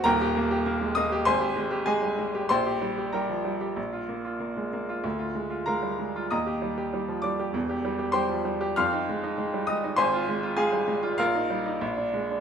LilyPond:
<<
  \new Staff \with { instrumentName = "Grand piano" } { \time 4/4 \key ees \major \tempo 4 = 96 <bes' g'' bes''>4. <ees'' ees'''>8 <c'' aes'' c'''>4 <aes' ees'' aes''>4 | <c'' g'' c'''>4 <bes' g'' bes''>2 r4 | r4 <bes' f'' bes''>4 <ees'' bes'' ees'''>4. <d'' d'''>8 | r4 <c'' g'' c'''>4 <f'' c''' f'''>4. <ees'' ees'''>8 |
<c'' aes'' c'''>4 <aes' f'' aes''>4 <f' bes' f''>2 | }
  \new Staff \with { instrumentName = "Grand piano" } { \clef bass \time 4/4 \key ees \major <ees,, ees,>16 g'16 bes16 g'16 bes16 aes16 bes16 g'16 aes,,16 g'16 aes16 g'16 aes16 g16 aes16 g'16 | bes,,16 g'16 g16 g'16 g16 f16 g16 g'16 bes,,16 f'16 bes16 f'16 bes16 aes16 bes16 f'16 | d,16 f'16 aes16 f'16 aes16 g16 aes16 f'16 ees,16 g'16 g16 g'16 g16 f16 g16 g'16 | <e,, e,>16 g'16 g16 g'16 g16 f16 g16 g'16 f,16 ees'16 aes16 ees'16 aes16 g16 aes16 ees'16 |
aes,,16 f'16 aes16 f'16 aes16 g16 aes16 f'16 bes,,16 ees'16 g16 ees'16 bes,,16 d'16 aes16 d'16 | }
>>